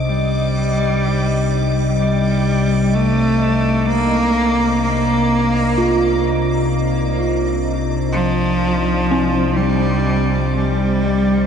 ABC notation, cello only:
X:1
M:4/4
L:1/8
Q:1/4=63
K:Cm
V:1 name="Cello" clef=bass
G,4 G,2 =A,2 | B,2 B,4 z2 | z F,3 G,2 G,2 |]